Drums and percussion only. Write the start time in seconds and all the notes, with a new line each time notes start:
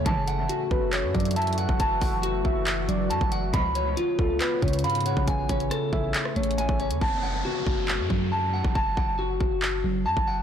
0.06 kick, closed hi-hat
0.28 closed hi-hat
0.49 closed hi-hat
0.71 kick
0.93 clap, closed hi-hat
1.15 kick, closed hi-hat
1.20 closed hi-hat
1.25 closed hi-hat
1.31 closed hi-hat
1.36 closed hi-hat
1.42 closed hi-hat
1.47 closed hi-hat
1.53 closed hi-hat
1.58 closed hi-hat
1.69 kick
1.80 kick, closed hi-hat
2.01 kick, open hi-hat
2.23 closed hi-hat
2.45 kick
2.67 clap, closed hi-hat
2.89 closed hi-hat
3.11 closed hi-hat
3.21 kick
3.32 closed hi-hat
3.54 kick, closed hi-hat
3.75 closed hi-hat
3.97 closed hi-hat
4.19 kick
4.40 clap, closed hi-hat
4.62 kick, closed hi-hat
4.68 closed hi-hat
4.73 closed hi-hat
4.79 closed hi-hat
4.84 closed hi-hat
4.90 closed hi-hat
4.95 closed hi-hat
5.01 closed hi-hat
5.06 closed hi-hat
5.17 kick
5.28 kick, closed hi-hat
5.49 kick, closed hi-hat, open hi-hat
5.60 closed hi-hat
5.71 cross-stick, closed hi-hat
5.93 kick
6.14 clap, closed hi-hat
6.25 cross-stick
6.36 closed hi-hat
6.43 closed hi-hat
6.51 closed hi-hat
6.58 closed hi-hat
6.69 kick
6.80 closed hi-hat
6.91 closed hi-hat
7.01 kick
7.67 kick
7.88 clap
8.10 kick
8.64 kick
8.75 kick
8.97 kick
9.40 kick
9.62 clap
10.17 kick